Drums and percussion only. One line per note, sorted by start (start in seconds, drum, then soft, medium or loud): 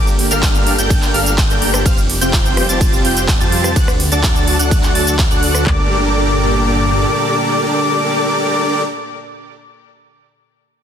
0.07 closed hi-hat soft
0.07 cabasa soft
0.19 open hi-hat loud
0.31 closed hi-hat medium
0.31 cabasa medium
0.43 kick loud
0.43 clap loud
0.43 closed hi-hat medium
0.43 ride medium
0.43 cabasa medium
0.55 closed hi-hat soft
0.55 cabasa soft
0.67 open hi-hat loud
0.79 closed hi-hat medium
0.79 cabasa medium
0.90 kick loud
0.90 closed hi-hat medium
0.90 ride medium
0.90 cabasa medium
1.02 clap soft
1.02 closed hi-hat soft
1.02 cabasa soft
1.14 open hi-hat loud
1.26 closed hi-hat medium
1.26 cabasa medium
1.38 kick loud
1.38 clap loud
1.38 closed hi-hat medium
1.38 ride medium
1.38 cabasa medium
1.50 closed hi-hat soft
1.50 cabasa soft
1.62 open hi-hat loud
1.74 cross-stick medium
1.74 closed hi-hat medium
1.74 cabasa medium
1.86 kick loud
1.86 closed hi-hat medium
1.86 ride medium
1.86 cabasa medium
1.98 closed hi-hat soft
1.98 cabasa soft
2.10 open hi-hat loud
2.21 closed hi-hat medium
2.21 cabasa medium
2.33 kick loud
2.33 clap loud
2.33 closed hi-hat medium
2.33 ride medium
2.33 cabasa medium
2.45 closed hi-hat soft
2.45 cabasa soft
2.57 cross-stick medium
2.57 open hi-hat medium
2.69 closed hi-hat medium
2.69 cabasa medium
2.81 kick loud
2.81 closed hi-hat medium
2.81 ride medium
2.81 cabasa medium
2.93 closed hi-hat soft
2.93 cabasa soft
3.05 open hi-hat loud
3.17 closed hi-hat medium
3.17 cabasa medium
3.28 kick loud
3.28 clap loud
3.28 closed hi-hat medium
3.28 ride medium
3.28 cabasa medium
3.40 closed hi-hat soft
3.40 cabasa soft
3.52 open hi-hat medium
3.64 cross-stick medium
3.64 closed hi-hat medium
3.64 cabasa medium
3.76 kick loud
3.76 closed hi-hat medium
3.76 ride medium
3.76 cabasa medium
3.88 cross-stick medium
3.88 closed hi-hat soft
3.88 cabasa soft
4.00 open hi-hat loud
4.12 closed hi-hat medium
4.12 cabasa medium
4.23 kick loud
4.23 clap loud
4.23 closed hi-hat medium
4.23 ride medium
4.23 cabasa medium
4.36 closed hi-hat soft
4.36 cabasa soft
4.48 open hi-hat loud
4.59 closed hi-hat medium
4.59 cabasa medium
4.71 kick loud
4.71 closed hi-hat medium
4.71 ride medium
4.71 cabasa medium
4.83 clap soft
4.83 closed hi-hat soft
4.83 cabasa soft
4.95 open hi-hat loud
5.07 closed hi-hat medium
5.07 cabasa medium
5.19 kick loud
5.19 clap loud
5.19 closed hi-hat medium
5.19 ride medium
5.19 cabasa medium
5.31 closed hi-hat soft
5.31 cabasa soft
5.43 open hi-hat loud
5.55 cross-stick medium
5.55 closed hi-hat medium
5.55 cabasa medium
5.67 kick loud
5.67 clap medium
5.67 floor tom loud